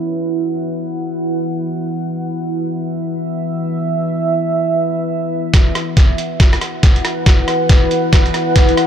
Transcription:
0.00 5.50 E4 medium
0.00 5.50 B4 medium
0.00 2.08 F#5 medium
2.09 5.53 E5 medium
5.53 8.87 E4 medium
5.53 8.87 B4 medium
5.53 8.87 F#5 medium
5.53 kick medium
5.53 snare soft
5.53 closed hi-hat medium
5.75 cross-stick medium
5.75 closed hi-hat medium
5.97 kick loud
5.97 snare soft
5.97 closed hi-hat medium
6.18 closed hi-hat medium
6.40 kick loud
6.40 snare soft
6.40 closed hi-hat medium
6.53 cross-stick medium
6.53 closed hi-hat soft
6.61 cross-stick soft
6.61 closed hi-hat medium
6.83 kick medium
6.83 snare medium
6.83 closed hi-hat medium
6.96 closed hi-hat soft
7.05 cross-stick medium
7.05 closed hi-hat medium
7.26 kick medium
7.26 snare medium
7.26 closed hi-hat medium
7.48 cross-stick medium
7.48 closed hi-hat medium
7.69 kick medium
7.69 snare medium
7.69 closed hi-hat medium
7.91 closed hi-hat medium
8.13 kick loud
8.13 snare medium
8.13 closed hi-hat medium
8.26 closed hi-hat soft
8.34 cross-stick soft
8.34 closed hi-hat medium
8.56 kick medium
8.56 snare medium
8.56 closed hi-hat medium
8.69 closed hi-hat soft
8.77 cross-stick medium
8.77 closed hi-hat medium

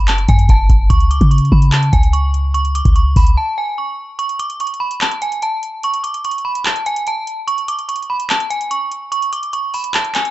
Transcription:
0.00 0.27 F#1 loud
0.08 0.27 A5 medium
0.08 clap loud
0.08 closed hi-hat medium
0.18 closed hi-hat medium
0.28 0.48 F#2 loud
0.28 0.48 G#5 medium
0.28 kick medium
0.28 closed hi-hat medium
0.39 closed hi-hat medium
0.49 0.69 F#1 loud
0.49 0.88 A5 medium
0.49 kick medium
0.49 closed hi-hat medium
0.70 0.89 F#1 loud
0.70 kick loud
0.70 closed hi-hat medium
0.90 1.20 C#2 loud
0.90 1.09 C#6 loud
0.90 kick loud
0.90 closed hi-hat medium
1.00 closed hi-hat medium
1.11 1.30 D6 medium
1.11 closed hi-hat medium
1.21 1.51 C#3 loud
1.21 kick loud
1.21 closed hi-hat medium
1.31 1.50 C#6 medium
1.31 closed hi-hat medium
1.38 closed hi-hat medium
1.45 closed hi-hat soft
1.52 1.91 C#3 loud
1.52 1.71 B5 medium
1.52 kick loud
1.62 closed hi-hat medium
1.72 1.91 A5 medium
1.72 clap loud
1.72 closed hi-hat medium
1.83 closed hi-hat medium
1.93 2.82 C#2 loud
1.93 2.12 G#5 medium
1.93 kick medium
1.93 closed hi-hat medium
2.03 closed hi-hat medium
2.13 2.52 C#6 medium
2.13 closed hi-hat medium
2.34 closed hi-hat medium
2.54 2.73 C#6 loud
2.54 closed hi-hat medium
2.65 closed hi-hat medium
2.75 2.94 D6 medium
2.75 closed hi-hat medium
2.85 3.15 C#2 loud
2.85 kick loud
2.85 closed hi-hat medium
2.96 3.15 C#6 medium
2.96 closed hi-hat medium
3.16 3.36 C#2 loud
3.16 3.35 B5 medium
3.16 kick loud
3.16 open hi-hat medium
3.27 closed hi-hat medium
3.37 3.56 A5 medium
3.58 3.77 G#5 medium
3.78 4.17 C#6 medium
4.19 4.38 C#6 medium
4.19 closed hi-hat medium
4.29 closed hi-hat medium
4.39 4.58 D6 medium
4.39 closed hi-hat medium
4.50 closed hi-hat medium
4.60 4.79 C#6 medium
4.60 closed hi-hat medium
4.67 closed hi-hat medium
4.74 closed hi-hat soft
4.80 4.99 B5 medium
4.91 closed hi-hat medium
5.01 5.20 A5 medium
5.01 clap loud
5.01 closed hi-hat medium
5.11 closed hi-hat medium
5.22 5.41 G#5 medium
5.22 closed hi-hat medium
5.32 closed hi-hat medium
5.42 5.81 A5 medium
5.42 closed hi-hat medium
5.63 closed hi-hat medium
5.83 6.03 C#6 loud
5.83 closed hi-hat medium
5.94 closed hi-hat medium
6.04 6.23 D6 medium
6.04 closed hi-hat medium
6.14 closed hi-hat medium
6.24 6.44 C#6 medium
6.24 closed hi-hat medium
6.31 closed hi-hat medium
6.38 closed hi-hat soft
6.45 6.64 B5 medium
6.55 closed hi-hat medium
6.66 6.85 A5 medium
6.66 clap loud
6.66 closed hi-hat medium
6.76 closed hi-hat medium
6.86 7.05 G#5 medium
6.86 closed hi-hat medium
6.96 closed hi-hat medium
7.07 7.46 A5 medium
7.07 closed hi-hat medium
7.27 closed hi-hat medium
7.47 7.67 C#6 loud
7.47 closed hi-hat medium
7.58 closed hi-hat medium
7.68 7.87 D6 medium
7.68 closed hi-hat medium
7.79 closed hi-hat medium
7.89 8.08 C#6 medium
7.89 closed hi-hat medium
7.96 closed hi-hat medium
8.02 closed hi-hat soft
8.10 8.29 B5 medium
8.20 closed hi-hat medium
8.30 8.49 A5 medium
8.30 clap loud
8.30 closed hi-hat medium
8.40 closed hi-hat medium
8.50 8.69 G#5 medium
8.50 closed hi-hat medium
8.61 closed hi-hat medium
8.71 9.10 C#6 medium
8.71 closed hi-hat medium
8.91 closed hi-hat medium
9.12 9.31 C#6 medium
9.12 closed hi-hat medium
9.22 closed hi-hat medium
9.33 9.52 D6 medium
9.33 closed hi-hat medium
9.43 closed hi-hat medium
9.53 9.72 C#6 medium
9.53 closed hi-hat medium
9.74 9.93 B5 medium
9.74 open hi-hat medium
9.84 closed hi-hat medium
9.94 10.14 A5 medium
9.94 clap loud
9.94 closed hi-hat medium
10.05 closed hi-hat medium
10.15 10.31 G#5 medium
10.15 clap loud
10.15 closed hi-hat medium
10.25 closed hi-hat medium

